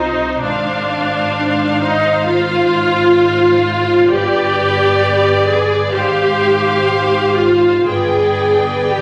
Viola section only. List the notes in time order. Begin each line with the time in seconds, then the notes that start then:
Already playing: D#4
0.42 D4
1.82 D#4
2.27 F4
4.10 G4
5.48 G#4
5.94 G4
7.36 F4
7.87 G#4
8.92 G4